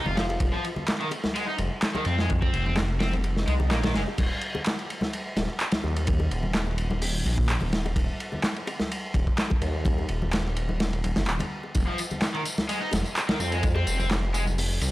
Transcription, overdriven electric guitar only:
0, 0, Header, 1, 2, 480
1, 0, Start_track
1, 0, Tempo, 472441
1, 412, Time_signature, 4, 2, 24, 8
1, 15154, End_track
2, 0, Start_track
2, 0, Title_t, "Overdriven electric guitar"
2, 0, Program_c, 0, 29
2, 59, Note_on_c, 0, 65, 80
2, 161, Note_off_c, 0, 65, 0
2, 171, Note_on_c, 0, 53, 77
2, 222, Note_off_c, 0, 53, 0
2, 539, Note_on_c, 0, 53, 78
2, 647, Note_off_c, 0, 53, 0
2, 1018, Note_on_c, 0, 51, 74
2, 1093, Note_off_c, 0, 51, 0
2, 1373, Note_on_c, 0, 56, 99
2, 1456, Note_off_c, 0, 56, 0
2, 1499, Note_on_c, 0, 63, 77
2, 1573, Note_off_c, 0, 63, 0
2, 1980, Note_on_c, 0, 51, 78
2, 2054, Note_off_c, 0, 51, 0
2, 2091, Note_on_c, 0, 60, 96
2, 2212, Note_off_c, 0, 60, 0
2, 2220, Note_on_c, 0, 56, 75
2, 2327, Note_off_c, 0, 56, 0
2, 2460, Note_on_c, 0, 60, 80
2, 2687, Note_off_c, 0, 60, 0
2, 2698, Note_on_c, 0, 60, 79
2, 2773, Note_off_c, 0, 60, 0
2, 3050, Note_on_c, 0, 60, 100
2, 3172, Note_off_c, 0, 60, 0
2, 3530, Note_on_c, 0, 56, 77
2, 3581, Note_off_c, 0, 56, 0
2, 3772, Note_on_c, 0, 58, 102
2, 3822, Note_off_c, 0, 58, 0
2, 3898, Note_on_c, 0, 51, 81
2, 3973, Note_off_c, 0, 51, 0
2, 4011, Note_on_c, 0, 56, 77
2, 4062, Note_off_c, 0, 56, 0
2, 12060, Note_on_c, 0, 53, 75
2, 12167, Note_off_c, 0, 53, 0
2, 12538, Note_on_c, 0, 51, 74
2, 12613, Note_off_c, 0, 51, 0
2, 12890, Note_on_c, 0, 56, 98
2, 12975, Note_off_c, 0, 56, 0
2, 13018, Note_on_c, 0, 63, 75
2, 13093, Note_off_c, 0, 63, 0
2, 13499, Note_on_c, 0, 51, 77
2, 13573, Note_off_c, 0, 51, 0
2, 13612, Note_on_c, 0, 60, 102
2, 13733, Note_off_c, 0, 60, 0
2, 13738, Note_on_c, 0, 56, 76
2, 13846, Note_off_c, 0, 56, 0
2, 13977, Note_on_c, 0, 60, 81
2, 14206, Note_off_c, 0, 60, 0
2, 14217, Note_on_c, 0, 60, 79
2, 14292, Note_off_c, 0, 60, 0
2, 14571, Note_on_c, 0, 56, 101
2, 14655, Note_off_c, 0, 56, 0
2, 15154, End_track
0, 0, End_of_file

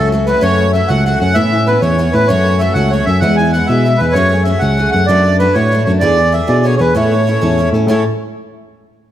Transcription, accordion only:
0, 0, Header, 1, 2, 480
1, 0, Start_track
1, 0, Key_signature, 3, "major"
1, 0, Tempo, 310398
1, 659, Time_signature, 6, 3, 24, 8
1, 14100, End_track
2, 0, Start_track
2, 0, Title_t, "Accordion"
2, 0, Program_c, 0, 21
2, 406, Note_on_c, 0, 71, 84
2, 645, Note_on_c, 0, 73, 118
2, 655, Note_off_c, 0, 71, 0
2, 1106, Note_off_c, 0, 73, 0
2, 1123, Note_on_c, 0, 76, 90
2, 1361, Note_on_c, 0, 78, 104
2, 1374, Note_off_c, 0, 76, 0
2, 1608, Note_off_c, 0, 78, 0
2, 1631, Note_on_c, 0, 78, 95
2, 1834, Note_off_c, 0, 78, 0
2, 1857, Note_on_c, 0, 78, 94
2, 2078, Note_on_c, 0, 76, 127
2, 2101, Note_off_c, 0, 78, 0
2, 2585, Note_on_c, 0, 71, 93
2, 2592, Note_off_c, 0, 76, 0
2, 2799, Note_on_c, 0, 73, 93
2, 2801, Note_off_c, 0, 71, 0
2, 3276, Note_on_c, 0, 71, 95
2, 3312, Note_off_c, 0, 73, 0
2, 3516, Note_on_c, 0, 73, 124
2, 3531, Note_off_c, 0, 71, 0
2, 4003, Note_on_c, 0, 76, 92
2, 4031, Note_off_c, 0, 73, 0
2, 4224, Note_on_c, 0, 78, 101
2, 4230, Note_off_c, 0, 76, 0
2, 4490, Note_on_c, 0, 73, 97
2, 4507, Note_off_c, 0, 78, 0
2, 4718, Note_off_c, 0, 73, 0
2, 4720, Note_on_c, 0, 76, 109
2, 4948, Note_off_c, 0, 76, 0
2, 4949, Note_on_c, 0, 78, 108
2, 5202, Note_on_c, 0, 80, 94
2, 5203, Note_off_c, 0, 78, 0
2, 5434, Note_off_c, 0, 80, 0
2, 5441, Note_on_c, 0, 78, 94
2, 5665, Note_on_c, 0, 76, 95
2, 5694, Note_off_c, 0, 78, 0
2, 6138, Note_on_c, 0, 71, 93
2, 6187, Note_off_c, 0, 76, 0
2, 6380, Note_on_c, 0, 73, 108
2, 6403, Note_off_c, 0, 71, 0
2, 6853, Note_off_c, 0, 73, 0
2, 6856, Note_on_c, 0, 76, 82
2, 7096, Note_on_c, 0, 78, 96
2, 7122, Note_off_c, 0, 76, 0
2, 7579, Note_off_c, 0, 78, 0
2, 7602, Note_on_c, 0, 78, 113
2, 7830, Note_off_c, 0, 78, 0
2, 7832, Note_on_c, 0, 74, 110
2, 8300, Note_off_c, 0, 74, 0
2, 8339, Note_on_c, 0, 71, 92
2, 8562, Note_on_c, 0, 73, 93
2, 8583, Note_off_c, 0, 71, 0
2, 9015, Note_off_c, 0, 73, 0
2, 9038, Note_on_c, 0, 73, 88
2, 9150, Note_off_c, 0, 73, 0
2, 9272, Note_on_c, 0, 74, 116
2, 9788, Note_on_c, 0, 76, 93
2, 9791, Note_off_c, 0, 74, 0
2, 10020, Note_on_c, 0, 74, 89
2, 10028, Note_off_c, 0, 76, 0
2, 10272, Note_on_c, 0, 73, 85
2, 10286, Note_off_c, 0, 74, 0
2, 10437, Note_off_c, 0, 73, 0
2, 10466, Note_on_c, 0, 73, 70
2, 10517, Note_off_c, 0, 73, 0
2, 10518, Note_on_c, 0, 71, 100
2, 10730, Note_off_c, 0, 71, 0
2, 10761, Note_on_c, 0, 73, 91
2, 11898, Note_off_c, 0, 73, 0
2, 12209, Note_on_c, 0, 73, 84
2, 12436, Note_off_c, 0, 73, 0
2, 14100, End_track
0, 0, End_of_file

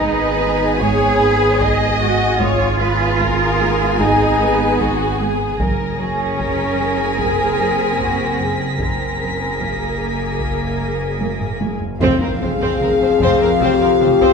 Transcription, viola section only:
0, 0, Header, 1, 2, 480
1, 0, Start_track
1, 0, Tempo, 800000
1, 1441, Time_signature, 4, 2, 24, 8
1, 8599, End_track
2, 0, Start_track
2, 0, Title_t, "Viola section"
2, 0, Program_c, 0, 48
2, 0, Note_on_c, 0, 59, 70
2, 0, Note_on_c, 0, 68, 69
2, 1418, Note_off_c, 0, 59, 0
2, 1418, Note_off_c, 0, 68, 0
2, 1443, Note_on_c, 0, 59, 77
2, 1443, Note_on_c, 0, 68, 74
2, 3338, Note_off_c, 0, 59, 0
2, 3338, Note_off_c, 0, 68, 0
2, 3360, Note_on_c, 0, 70, 66
2, 3362, Note_on_c, 0, 68, 68
2, 5257, Note_off_c, 0, 70, 0
2, 5258, Note_off_c, 0, 68, 0
2, 5283, Note_on_c, 0, 68, 43
2, 5284, Note_on_c, 0, 70, 42
2, 7058, Note_off_c, 0, 68, 0
2, 7059, Note_off_c, 0, 70, 0
2, 7208, Note_on_c, 0, 60, 67
2, 7316, Note_off_c, 0, 60, 0
2, 7332, Note_on_c, 0, 60, 41
2, 7378, Note_off_c, 0, 60, 0
2, 7453, Note_on_c, 0, 60, 41
2, 7499, Note_off_c, 0, 60, 0
2, 7571, Note_on_c, 0, 60, 57
2, 7678, Note_off_c, 0, 60, 0
2, 7689, Note_on_c, 0, 60, 45
2, 7736, Note_off_c, 0, 60, 0
2, 7812, Note_on_c, 0, 60, 45
2, 7858, Note_off_c, 0, 60, 0
2, 7930, Note_on_c, 0, 60, 60
2, 8038, Note_off_c, 0, 60, 0
2, 8047, Note_on_c, 0, 60, 48
2, 8094, Note_off_c, 0, 60, 0
2, 8165, Note_on_c, 0, 60, 68
2, 8275, Note_off_c, 0, 60, 0
2, 8284, Note_on_c, 0, 60, 50
2, 8331, Note_off_c, 0, 60, 0
2, 8405, Note_on_c, 0, 60, 50
2, 8452, Note_off_c, 0, 60, 0
2, 8527, Note_on_c, 0, 60, 61
2, 8599, Note_off_c, 0, 60, 0
2, 8599, End_track
0, 0, End_of_file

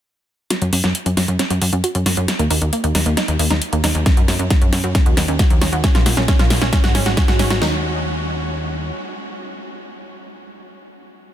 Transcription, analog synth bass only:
0, 0, Header, 1, 2, 480
1, 0, Start_track
1, 0, Tempo, 444444
1, 545, Time_signature, 4, 2, 24, 8
1, 12245, End_track
2, 0, Start_track
2, 0, Title_t, "Analog synth bass"
2, 0, Program_c, 0, 38
2, 665, Note_on_c, 0, 42, 78
2, 765, Note_off_c, 0, 42, 0
2, 785, Note_on_c, 0, 42, 92
2, 886, Note_off_c, 0, 42, 0
2, 906, Note_on_c, 0, 42, 90
2, 1006, Note_off_c, 0, 42, 0
2, 1145, Note_on_c, 0, 42, 84
2, 1245, Note_off_c, 0, 42, 0
2, 1265, Note_on_c, 0, 42, 93
2, 1365, Note_off_c, 0, 42, 0
2, 1385, Note_on_c, 0, 42, 87
2, 1485, Note_off_c, 0, 42, 0
2, 1625, Note_on_c, 0, 42, 84
2, 1725, Note_off_c, 0, 42, 0
2, 1745, Note_on_c, 0, 42, 93
2, 1846, Note_off_c, 0, 42, 0
2, 1865, Note_on_c, 0, 42, 86
2, 1965, Note_off_c, 0, 42, 0
2, 2105, Note_on_c, 0, 42, 85
2, 2206, Note_off_c, 0, 42, 0
2, 2225, Note_on_c, 0, 42, 92
2, 2325, Note_off_c, 0, 42, 0
2, 2346, Note_on_c, 0, 42, 95
2, 2446, Note_off_c, 0, 42, 0
2, 2586, Note_on_c, 0, 39, 80
2, 2686, Note_off_c, 0, 39, 0
2, 2705, Note_on_c, 0, 39, 96
2, 2805, Note_off_c, 0, 39, 0
2, 2825, Note_on_c, 0, 39, 88
2, 2925, Note_off_c, 0, 39, 0
2, 3065, Note_on_c, 0, 39, 87
2, 3165, Note_off_c, 0, 39, 0
2, 3185, Note_on_c, 0, 39, 98
2, 3286, Note_off_c, 0, 39, 0
2, 3305, Note_on_c, 0, 39, 88
2, 3406, Note_off_c, 0, 39, 0
2, 3546, Note_on_c, 0, 39, 81
2, 3646, Note_off_c, 0, 39, 0
2, 3665, Note_on_c, 0, 39, 96
2, 3766, Note_off_c, 0, 39, 0
2, 3786, Note_on_c, 0, 39, 92
2, 3886, Note_off_c, 0, 39, 0
2, 4025, Note_on_c, 0, 39, 85
2, 4125, Note_off_c, 0, 39, 0
2, 4145, Note_on_c, 0, 39, 88
2, 4245, Note_off_c, 0, 39, 0
2, 4266, Note_on_c, 0, 39, 96
2, 4366, Note_off_c, 0, 39, 0
2, 4505, Note_on_c, 0, 42, 83
2, 4606, Note_off_c, 0, 42, 0
2, 4625, Note_on_c, 0, 42, 98
2, 4726, Note_off_c, 0, 42, 0
2, 4745, Note_on_c, 0, 42, 90
2, 4846, Note_off_c, 0, 42, 0
2, 4985, Note_on_c, 0, 42, 86
2, 5085, Note_off_c, 0, 42, 0
2, 5105, Note_on_c, 0, 42, 98
2, 5205, Note_off_c, 0, 42, 0
2, 5224, Note_on_c, 0, 42, 88
2, 5325, Note_off_c, 0, 42, 0
2, 5465, Note_on_c, 0, 39, 85
2, 5565, Note_off_c, 0, 39, 0
2, 5585, Note_on_c, 0, 39, 99
2, 5685, Note_off_c, 0, 39, 0
2, 5705, Note_on_c, 0, 39, 91
2, 5805, Note_off_c, 0, 39, 0
2, 5944, Note_on_c, 0, 39, 89
2, 6045, Note_off_c, 0, 39, 0
2, 6064, Note_on_c, 0, 39, 94
2, 6165, Note_off_c, 0, 39, 0
2, 6184, Note_on_c, 0, 39, 94
2, 6285, Note_off_c, 0, 39, 0
2, 6424, Note_on_c, 0, 34, 86
2, 6525, Note_off_c, 0, 34, 0
2, 6544, Note_on_c, 0, 34, 102
2, 6645, Note_off_c, 0, 34, 0
2, 6664, Note_on_c, 0, 34, 94
2, 6765, Note_off_c, 0, 34, 0
2, 6905, Note_on_c, 0, 34, 88
2, 7005, Note_off_c, 0, 34, 0
2, 7024, Note_on_c, 0, 34, 101
2, 7125, Note_off_c, 0, 34, 0
2, 7144, Note_on_c, 0, 34, 91
2, 7245, Note_off_c, 0, 34, 0
2, 7385, Note_on_c, 0, 32, 83
2, 7485, Note_off_c, 0, 32, 0
2, 7504, Note_on_c, 0, 32, 100
2, 7605, Note_off_c, 0, 32, 0
2, 7624, Note_on_c, 0, 32, 94
2, 7725, Note_off_c, 0, 32, 0
2, 7865, Note_on_c, 0, 32, 91
2, 7965, Note_off_c, 0, 32, 0
2, 7985, Note_on_c, 0, 32, 90
2, 8085, Note_off_c, 0, 32, 0
2, 8105, Note_on_c, 0, 32, 96
2, 8206, Note_off_c, 0, 32, 0
2, 8226, Note_on_c, 0, 39, 93
2, 9622, Note_off_c, 0, 39, 0
2, 12245, End_track
0, 0, End_of_file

